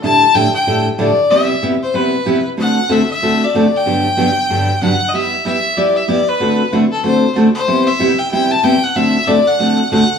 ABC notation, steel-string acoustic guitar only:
X:1
M:4/4
L:1/8
Q:"Swing" 1/4=188
K:G
V:1 name="Steel-string acoustic guitar"
[A,,D,G,DEA] z [A,,D,G,DEA] z [A,,D,G,DEA] z [A,,D,G,DEA] z | [C,G,B,EG] z [C,G,B,EG] z [C,G,B,EG] z [C,G,B,EG] z | [D,A,CFA] z [D,A,CFA] z [D,A,CFA] z [D,A,CFA] z | [G,,D,F,B,DG] z [G,,D,F,B,DG] z [G,,D,F,B,DG] z [G,,D,F,B,DG] z |
[G,B,EG] z [G,B,EG] z [G,B,EG] z [G,B,EG] z | [D,A,CFA] z [D,A,CFA] z [D,A,CFA] z [D,A,CFA] z | [C,G,B,EG] z [C,G,B,EG] z [C,G,B,EG] z [C,G,B,EG] z | [D,A,CFA] z [D,A,CFA] z [D,A,CFA] z [D,A,CFA] z |]